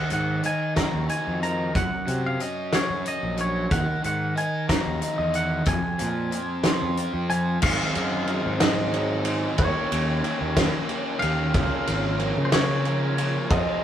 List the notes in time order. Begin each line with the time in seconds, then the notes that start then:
Already playing: F#5
0.10 G#2 D#3 F#5, closed hi-hat
0.43 D#4 G#5, closed hi-hat
0.76 F#4 A#5, kick, snare, closed hi-hat
0.94 D#2
1.08 D#4 G#5, closed hi-hat
1.27 F2
1.42 D#3 A#5, closed hi-hat
1.75 F#2 F#5, kick, closed hi-hat
2.07 C3 F#3, closed hi-hat
2.26 F5
2.40 C#4 D#5, closed hi-hat
2.73 F#4 C#5, snare, closed hi-hat
2.89 F#2
3.05 C#4 D#5, closed hi-hat
3.23 A#1
3.37 F#3 C#5, closed hi-hat
3.71 D#2 D#3 F#5, kick, closed hi-hat
4.03 G#2 D#3 F#5, closed hi-hat
4.36 D#4 G#5, closed hi-hat
4.68 F#4 A#5, kick, snare, closed hi-hat
4.86 D#2
5.01 D#4, closed hi-hat
5.18 E2 D#5
5.34 D#3 F#5, closed hi-hat
5.65 F2 G#5, kick, closed hi-hat
5.98 A#2 F3, closed hi-hat
6.31 C4, closed hi-hat
6.64 F4, snare, closed hi-hat
6.82 F2
6.97 C4, closed hi-hat
7.14 F2
7.30 F3 G#5, closed hi-hat
7.62 G#2 D#3 F#3 C4 D#4 G#4 F5, kick, crash
7.95 F#2 G#2 D#3 F#3 C4 D#4 G#4, ride
8.27 G#2 D#3 F#3 C4 D#4 G#4, ride
8.46 G#2
8.59 G#2 D#3 F#3 C4 D#4 G#4 D#5, snare, ride
8.92 G#2 D#3 F#3 C4 D#4 G#4, ride
9.24 G#2 D#3 F#3 C4 D#4 G#4, ride
9.57 D#2 D#3 A#3 C#4 G4 C#5, kick, ride
9.91 D#2 D#3 A#3 C#4 G4, ride
10.23 D#3 A#3 C#4 G4, ride
10.41 D#2
10.56 D#3 A#3 C#4 G4, kick, snare, ride
10.87 D#3 A#3 C#4 G4, ride
11.19 D#2 D#3 A#3 C#4 F5, ride
11.24 G4
11.54 C#2 C#3 F3 A#3 F4 A#4, kick, ride
11.86 G#1 C#3 F3 A#3 F4 A#4, ride
12.18 C#3 F3 A#3 F4 A#4, ride
12.37 C#3
12.45 C5
12.51 C#3 F3 A#3 F4 A#4 C#5, snare, ride
12.84 C#3 F3 A#3 F4 A#4, ride
13.17 C#3 F3 A#3 F4 A#4, ride
13.49 F2 F3 C4 F4 G#4 D#5, kick, ride